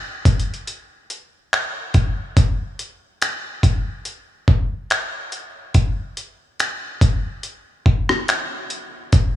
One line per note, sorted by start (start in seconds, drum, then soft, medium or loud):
0.25 kick medium
0.25 closed hi-hat medium
0.40 closed hi-hat soft
0.54 closed hi-hat soft
0.67 closed hi-hat medium
1.10 closed hi-hat medium
1.53 finger snap loud
1.94 kick medium
1.94 closed hi-hat soft
2.37 kick loud
2.37 closed hi-hat medium
2.79 closed hi-hat medium
3.22 finger snap loud
3.22 closed hi-hat medium
3.63 kick medium
3.63 closed hi-hat medium
4.05 closed hi-hat medium
4.48 kick medium
4.90 finger snap loud
4.90 closed hi-hat medium
5.32 closed hi-hat medium
5.74 kick loud
5.74 closed hi-hat medium
6.17 closed hi-hat medium
6.60 finger snap loud
6.60 closed hi-hat medium
7.01 kick medium
7.01 closed hi-hat medium
7.43 closed hi-hat medium
7.86 kick medium
8.09 cross-stick medium
8.28 finger snap loud
8.28 closed hi-hat medium
8.70 closed hi-hat medium
9.12 kick loud
9.12 closed hi-hat medium